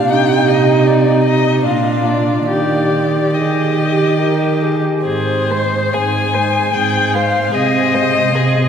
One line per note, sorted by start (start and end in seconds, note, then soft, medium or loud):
0.00 0.10 D4 soft
0.00 1.64 G4 soft
0.09 1.66 C3 soft
0.09 1.64 D#4 soft
0.09 0.50 G5 medium
0.48 0.88 D#5 soft
0.87 1.24 D5 soft
1.24 1.64 D#5 soft
1.63 2.49 A#2 soft
1.63 2.48 D4 soft
1.63 2.51 F4 soft
1.63 2.07 F5 soft
2.06 2.46 D5 soft
2.47 4.80 D#3 soft
2.47 3.28 G4 soft
2.47 3.35 G4 soft
2.47 3.36 D5 soft
3.35 4.81 G4 soft
3.35 3.80 G#4 soft
3.35 4.63 D#5 soft
3.78 4.20 G4 soft
4.19 4.64 A#4 soft
4.62 5.05 G#4 soft
5.05 5.85 G#2 soft
5.05 5.52 C4 soft
5.05 5.52 G#4 soft
5.05 5.95 C5 soft
5.50 5.96 G#3 soft
5.50 5.95 C5 soft
5.93 6.66 G#2 soft
5.93 6.37 C4 soft
5.93 6.35 G#4 soft
5.93 6.75 G#5 medium
6.34 6.74 G#3 soft
6.34 6.74 C5 soft
6.74 7.44 G#2 soft
6.74 7.16 C4 soft
6.74 7.17 G#4 soft
6.74 7.15 G5 soft
7.14 7.53 G#3 soft
7.14 7.54 C5 soft
7.14 7.56 F5 soft
7.53 8.24 C3 soft
7.53 7.95 C4 soft
7.53 7.95 G#4 soft
7.53 8.69 D#5 medium
7.93 8.35 G#3 soft
7.93 8.37 C5 soft
8.33 8.69 C3 soft
8.33 8.69 C4 soft
8.33 8.69 G#4 soft